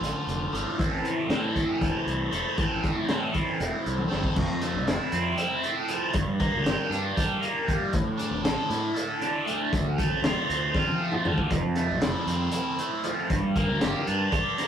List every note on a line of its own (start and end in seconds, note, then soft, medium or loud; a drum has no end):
0.00 0.12 A1 medium
0.00 0.52 D3 medium
0.00 0.54 A3 medium
0.00 0.54 F4 medium
0.00 closed hi-hat medium
0.27 0.48 F1 medium
0.27 closed hi-hat medium
0.52 0.63 G#1 medium
0.52 0.76 A2 medium
0.52 0.77 D3 medium
0.52 0.79 A3 medium
0.52 0.78 F4 medium
0.52 closed hi-hat medium
0.77 1.00 A1 loud
0.77 1.28 A2 medium
0.77 1.29 E3 medium
0.77 1.30 A3 medium
0.77 1.31 C4 medium
0.77 1.31 E4 medium
0.77 1.32 A4 medium
0.77 kick loud
0.77 closed hi-hat medium
1.05 closed hi-hat medium
1.29 1.80 A2 loud
1.29 1.50 A2 medium
1.29 2.58 E3 medium
1.29 1.57 A3 medium
1.29 1.57 C4 medium
1.29 1.56 E4 loud
1.29 1.54 A4 loud
1.29 snare loud
1.29 closed hi-hat medium
1.54 2.30 A3 medium
1.54 2.31 C4 medium
1.54 2.33 E4 medium
1.54 2.33 A4 medium
1.54 kick medium
1.54 closed hi-hat medium
1.81 1.92 E1 loud
1.81 kick medium
1.81 closed hi-hat medium
2.06 2.27 C2 medium
2.06 closed hi-hat soft
2.31 2.43 E1 medium
2.31 2.58 A3 medium
2.31 2.58 C4 medium
2.31 2.58 E4 medium
2.31 2.59 A4 medium
2.31 closed hi-hat medium
2.57 2.78 A1 loud
2.57 3.07 A2 medium
2.57 3.07 E3 medium
2.57 3.08 A3 medium
2.57 3.09 C4 medium
2.57 3.09 E4 medium
2.57 3.10 A4 medium
2.57 kick loud
2.57 closed hi-hat medium
2.84 kick medium
2.84 snare soft
2.84 closed hi-hat medium
3.08 3.59 A2 medium
3.08 3.30 A2 medium
3.08 3.60 E3 medium
3.08 3.35 A3 loud
3.08 3.35 C4 loud
3.08 3.33 E4 loud
3.08 3.32 A4 loud
3.08 snare loud
3.08 closed hi-hat medium
3.33 4.07 A3 medium
3.33 4.09 C4 medium
3.33 4.10 E4 medium
3.33 4.10 A4 medium
3.33 kick medium
3.33 closed hi-hat medium
3.60 3.70 E1 loud
3.60 closed hi-hat medium
3.86 4.06 C2 medium
3.86 closed hi-hat medium
3.98 high tom medium
4.08 4.22 G1 medium
4.08 4.34 A3 medium
4.08 4.34 C4 medium
4.08 4.35 E4 medium
4.08 4.35 A4 medium
4.08 snare medium
4.24 kick medium
4.35 4.47 F1 loud
4.35 5.63 F2 medium
4.35 kick loud
4.35 crash loud
4.49 4.75 F2 medium
4.61 5.62 A3 medium
4.61 snare soft
4.61 closed hi-hat medium
4.74 4.85 C2 medium
4.87 4.97 F1 medium
4.87 5.38 E4 medium
4.87 snare loud
4.87 closed hi-hat medium
5.12 5.33 F2 medium
5.12 6.15 C4 medium
5.12 closed hi-hat medium
5.38 6.15 E4 medium
5.38 closed hi-hat medium
5.63 6.15 A3 medium
5.63 closed hi-hat medium
5.88 6.15 F3 medium
5.88 closed hi-hat medium
6.13 6.25 G1 loud
6.13 7.43 G2 medium
6.13 kick loud
6.13 closed hi-hat medium
6.27 6.55 G2 medium
6.40 7.40 A#3 medium
6.40 kick medium
6.40 closed hi-hat medium
6.54 6.64 D2 medium
6.64 6.75 G1 medium
6.64 7.15 G4 medium
6.64 snare loud
6.64 closed hi-hat medium
6.90 7.11 G2 medium
6.90 8.18 D4 medium
6.90 snare soft
6.90 closed hi-hat medium
7.16 7.93 G4 medium
7.16 kick loud
7.16 snare soft
7.16 closed hi-hat medium
7.41 7.93 A#3 medium
7.41 closed hi-hat medium
7.66 7.93 G3 medium
7.66 kick medium
7.66 closed hi-hat medium
7.93 8.04 A1 loud
7.93 9.21 A2 medium
7.93 kick loud
7.93 closed hi-hat medium
8.07 8.32 A2 medium
8.18 9.19 D4 medium
8.18 closed hi-hat medium
8.31 8.42 E1 medium
8.43 8.54 A1 loud
8.43 8.94 A4 medium
8.43 snare loud
8.43 closed hi-hat loud
8.70 8.90 A2 medium
8.70 9.72 E4 medium
8.70 snare soft
8.70 closed hi-hat medium
8.95 10.24 A4 medium
8.95 closed hi-hat medium
9.20 9.72 D4 medium
9.20 snare soft
9.20 closed hi-hat medium
9.46 9.98 A3 medium
9.46 closed hi-hat medium
9.73 9.83 D1 medium
9.73 11.00 D2 medium
9.73 kick loud
9.73 closed hi-hat medium
9.86 10.11 D2 medium
9.98 11.00 A3 medium
9.98 kick medium
9.98 closed hi-hat medium
10.10 10.20 A1 medium
10.22 10.33 D1 medium
10.22 10.74 F4 medium
10.22 snare loud
10.22 closed hi-hat medium
10.49 10.70 D2 medium
10.49 11.51 C4 medium
10.49 closed hi-hat medium
10.75 11.51 F4 medium
10.75 kick loud
10.75 snare medium
10.87 high tom medium
11.01 11.51 A3 medium
11.12 mid tom medium
11.25 11.51 D3 medium
11.25 floor tom medium
11.38 kick medium
11.50 11.61 F1 loud
11.50 12.79 F2 medium
11.50 kick medium
11.50 closed hi-hat medium
11.63 11.92 F2 medium
11.76 12.78 A3 medium
11.76 snare soft
11.76 closed hi-hat medium
11.91 12.00 C2 medium
12.01 12.12 F1 loud
12.01 12.51 E4 medium
12.01 snare loud
12.01 closed hi-hat loud
12.27 12.48 F2 medium
12.27 13.30 C4 medium
12.27 closed hi-hat medium
12.52 13.29 E4 medium
12.52 closed hi-hat medium
12.79 13.30 A3 medium
12.79 closed hi-hat medium
13.04 13.30 F3 medium
13.04 closed hi-hat medium
13.30 13.40 G1 loud
13.30 14.58 G2 medium
13.30 kick loud
13.30 closed hi-hat medium
13.42 13.69 G2 medium
13.56 14.57 A#3 medium
13.56 kick medium
13.56 closed hi-hat medium
13.68 13.78 D2 medium
13.81 13.92 G1 loud
13.81 14.31 G4 medium
13.81 snare loud
13.81 closed hi-hat loud
14.07 14.28 G2 medium
14.07 14.68 D4 medium
14.07 closed hi-hat medium
14.32 14.68 G4 medium
14.32 kick loud
14.32 closed hi-hat medium
14.58 14.68 A#3 medium
14.58 snare soft
14.58 closed hi-hat medium